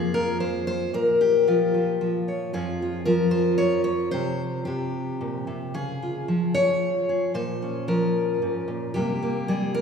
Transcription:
Already playing: F2 F3 A#3 G#4
0.14 A#4
0.40 C5
0.67 C5
0.93 A#2 A#4
1.21 G4
1.47 F3 F4
1.74 F3
2.01 F3
2.28 C#5
2.53 F2 F3 F4 G#4
2.82 F4
3.05 F3 A#4
3.31 C5
3.58 C#5
3.84 C#5
4.11 C3 C5
4.65 C3 G4
5.21 A#2
5.47 C3
5.74 C#3 G#4
6.03 F4
6.28 F3
6.54 C#5
7.09 G#4
7.34 A#2 C5
7.62 C#4
7.88 F3 A#4
8.42 G#2
8.68 A#2
8.94 C3 G3 A#3 G4
9.23 A#3
9.48 G3 G#4
9.74 A#4

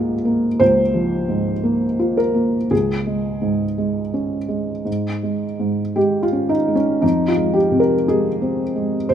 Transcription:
Already playing: C#2 G#2 A#3 F4 G#4
0.25 A#3
0.60 C#2 C5
0.94 F3
1.28 G#2
1.63 A#3
1.99 F4
2.17 A#4
2.34 A#3
2.71 C#2 G#4
3.07 G#3
3.42 G#2
3.78 G#3
4.14 C#4
4.48 G#3
4.85 G#2
5.23 G#3
5.59 G#2
5.96 G#3 G4
6.23 F4
6.33 C#4
6.49 D#4
6.68 G#3
6.75 C#4
7.02 F2 D#4
7.28 F4
7.37 G#3
7.54 G4
7.71 C3
7.80 A#4
8.08 G#3 G#4
8.42 C4
8.76 G#3
9.09 C3 C5

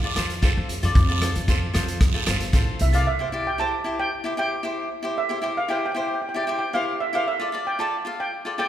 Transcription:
Already playing: F5
0.03 F4 A4 D5
0.15 F2 F4 A4 C5, cross-stick, closed hi-hat, short guiro
0.30 closed hi-hat
0.42 F4 A4 C5, kick, closed hi-hat, short guiro
0.57 F2
0.69 closed hi-hat
0.83 F2 F4 A4 D5, closed hi-hat
0.95 F2, kick, closed hi-hat, long guiro
1.09 F4 A4 D5
1.21 F4 A4 C5, cross-stick, closed hi-hat
1.35 F2, closed hi-hat
1.48 F4 A4 C5, kick, closed hi-hat, short guiro
1.74 F2 F4 A4 C5, cross-stick, closed hi-hat, short guiro
1.88 closed hi-hat
2.01 kick, cross-stick, closed hi-hat, long guiro
2.14 F4 A4 C5
2.27 G1 F4 A4 C5, cross-stick, closed hi-hat, short guiro
2.40 closed hi-hat
2.53 A1 F4 A4 C5, kick, closed hi-hat, short guiro
2.79 C2 E5, closed hi-hat
2.93 F4 A4 D5 F5, closed hi-hat
3.07 E5
3.19 E4 G4 C5
3.32 E4 G4 D5
3.47 G5
3.58 E4 G4 C5 A5
3.84 E4 G4 C5
4.00 G5
4.24 E4 G4 C5
4.37 E4 G4 C5 G5
4.63 E4 G4 C5
5.03 E4 G4 C5
5.18 E5
5.29 E4 G4 C5
5.42 E4 G4 C5
5.57 F5
5.68 E4 G4 C5 G5
5.77 G5
5.86 G5
5.92 E4 G4 G5
5.97 C5 G5
6.07 G5
6.14 G5
6.22 G5
6.29 G5
6.34 E4 G4 D5 G5
6.44 E4 G5
6.48 G4 C5 G5
6.59 G5
6.73 E4 G4 C5 F5
7.01 E5
7.13 E4 G4 C5 F5
7.28 E5
7.40 F4 A4 D5
7.52 F4 A4 D5
7.67 G5
7.79 F4 A4 D5 A5
8.05 F4 A4 F5
8.20 G5
8.45 F4 A4 D5
8.58 F4 A4 D5 G5

